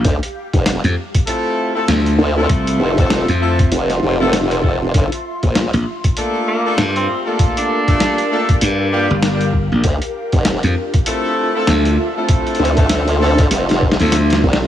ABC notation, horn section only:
X:1
M:4/4
L:1/16
Q:"Swing 16ths" 1/4=98
K:Dm
V:1 name="Horn section"
z8 [A,CEFA]3 [A,CEFA] z3 [A,CEFA]- | [A,CEFA]3 [A,CEFA]2 z [A,CEFA] z4 [A,CEFA] z4 | z8 [A,B,DFA]3 [A,B,DFA] z3 [A,B,DFA]- | [A,B,DFA]3 [A,B,DFA]2 z [A,B,DFA] z3 [G,B,DFG] z4 z |
z8 [A,CEFA]3 [A,CEFA] z3 [A,CEFA]- | [A,CEFA]3 [A,CEFA]2 z [A,CEFA] z4 [A,CEFA] z4 |]